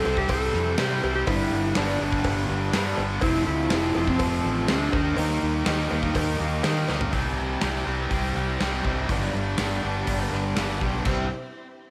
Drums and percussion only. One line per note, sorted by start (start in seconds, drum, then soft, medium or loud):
0.05 cowbell medium
0.17 kick medium
0.28 kick loud
0.28 open hi-hat medium
0.28 cowbell loud
0.54 snare soft
0.78 snare loud
0.78 open hi-hat medium
0.78 cowbell medium
1.04 cowbell medium
1.27 kick loud
1.27 open hi-hat medium
1.27 cowbell loud
1.75 snare loud
1.75 open hi-hat medium
1.75 cowbell medium
2.12 kick loud
2.24 kick loud
2.24 open hi-hat medium
2.24 cowbell loud
2.73 snare loud
2.73 open hi-hat medium
2.73 cowbell medium
2.97 cowbell medium
3.21 kick loud
3.21 open hi-hat medium
3.21 cowbell loud
3.34 snare soft
3.70 snare loud
3.70 open hi-hat medium
3.70 cowbell medium
3.95 cowbell medium
4.08 kick loud
4.19 kick loud
4.19 open hi-hat medium
4.19 cowbell medium
4.68 snare loud
4.68 open hi-hat medium
4.68 cowbell medium
4.92 kick loud
4.92 cowbell medium
5.17 open hi-hat medium
5.17 cowbell medium
5.30 snare soft
5.66 snare loud
5.66 open hi-hat medium
5.66 cowbell medium
5.91 cowbell medium
6.03 kick medium
6.15 kick loud
6.15 open hi-hat medium
6.15 cowbell loud
6.63 snare loud
6.63 open hi-hat medium
6.63 cowbell medium
6.88 snare medium
6.88 cowbell medium
7.01 floor tom loud
7.13 kick loud
7.13 open hi-hat medium
7.61 snare loud
7.61 open hi-hat medium
8.11 kick medium
8.11 open hi-hat medium
8.61 snare loud
8.61 open hi-hat medium
8.85 kick medium
9.09 kick loud
9.09 open hi-hat medium
9.21 snare soft
9.58 snare loud
9.58 open hi-hat medium
10.07 kick medium
10.07 open hi-hat medium
10.33 snare soft
10.57 snare loud
10.57 open hi-hat medium
10.81 kick loud
11.05 kick loud
11.05 crash medium